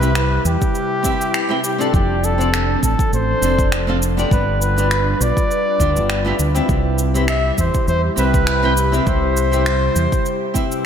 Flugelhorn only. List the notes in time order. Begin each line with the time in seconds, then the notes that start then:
Already playing: B4
0.46 G4
1.65 G4
1.81 A4
1.95 G4
2.24 A4
2.83 A4
3.14 C5
4.32 B4
4.62 B4
5.22 D5
7.29 E5
7.59 C5
7.89 C5
8.18 B4
9.07 C5